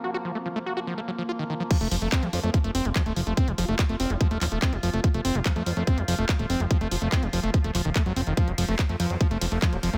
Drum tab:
CC |----------------|x---------------|----------------|----------------|
RD |----------------|----------------|----------------|----------------|
HH |----------------|xxo-xxoxxxoxxxox|xxo-xxoxxxoxxxox|xxoxxxoxxxoxxxox|
CP |----------------|----x-------x---|----x-----x-x---|----x-------x---|
BD |----------------|o---o---o---o---|o---o---o---o---|o---o---o---o---|

CC |----------------|----------------|
RD |----------------|--x---x---x---x-|
HH |xxoxxxoxxxo-xxox|xxoxxxoxxxoxxxox|
CP |----x-----x-x---|----x-------x---|
BD |o---o---o---o---|o---o---o---o---|